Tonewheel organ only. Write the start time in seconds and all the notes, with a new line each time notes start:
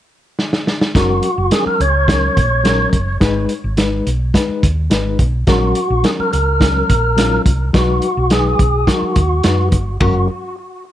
0.97 F#4
1.52 G#4
1.67 A#4
1.81 C#5
5.49 F#4
6.05 G#4
6.20 A#4
6.33 A#4
7.74 F#4
8.32 G#4
8.88 F#4
10.02 F#4